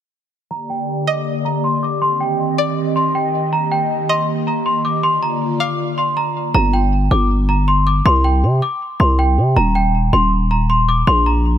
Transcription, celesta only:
0.51 A#5
0.70 G5
1.08 D6
1.45 A#5
1.64 C6
1.83 D6
2.02 C6
2.20 G5
2.58 D6
2.96 C6
3.15 G5
3.53 A#5
3.72 G5
4.09 C6
4.47 A#5
4.66 C6
4.85 D6
5.03 C6
5.23 A#5
5.60 D6
5.98 C6
6.17 A#5
6.54 A#5
6.73 G5
7.11 D6
7.49 A#5
7.68 C6
7.87 D6
8.06 C6
8.24 G5
8.62 D6
9.00 C6
9.19 G5
9.57 A#5
9.75 G5
10.13 C6
10.51 A#5
10.70 C6
10.89 D6
11.07 C6
11.26 A#5

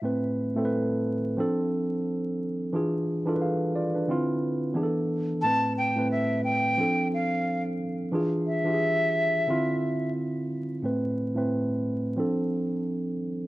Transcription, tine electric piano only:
0.02 A2 A3 C4 B4
0.55 A2 A3 C4 A4
0.65 B4
1.37 F3 C4 D4 A4
2.73 E3 D4 F4 G#4
3.26 E3 D4 F4 A4
3.35 B4
3.42 G#4 F5
3.75 F4 D5
3.95 D4 B4
4.08 D3 C4 E4 F4
4.74 E3 B3 D4 G#4
4.83 A4
5.43 A2 A3 C4 B4
5.95 A2 A3 C4 B4
6.77 F3 C4 D4 A4
8.12 E3 D4 F4 G#4
8.64 E3 D4 F4 G4
8.74 G#4
9.47 D3 C4 E4 F4
10.82 A2 A3 C4 B4
11.35 A2 A3 C4 B4
12.17 F3 C4 D4 A4

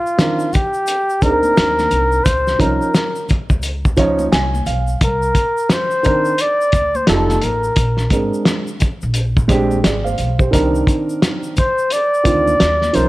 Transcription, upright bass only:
1.22 D2
1.58 D#2
1.92 C2
2.26 C#2
2.60 C2
3.50 C#2
4.33 C2
4.68 B1
5.02 C2
6.73 D2
7.09 F1
7.43 A1
7.77 A#1
8.11 G#1
9.03 A#1
9.85 G#1
10.19 B1
10.54 C2
12.26 D2
12.61 D#2
12.95 C2

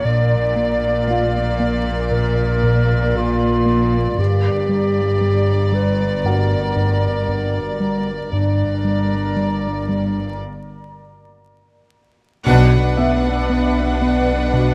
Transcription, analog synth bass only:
0.05 A#2
0.56 A#3
1.08 A#3
1.60 A#3
2.11 A#2
2.63 A#2
3.15 A#2
3.66 A#3
4.18 G2
4.69 G3
5.21 G3
5.72 G3
6.24 G2
6.76 G2
7.28 G2
7.80 G3
8.33 G2
8.84 G3
9.37 G3
9.89 G3
12.46 B2
12.98 B3
13.50 B3
14.02 B3
14.53 B2

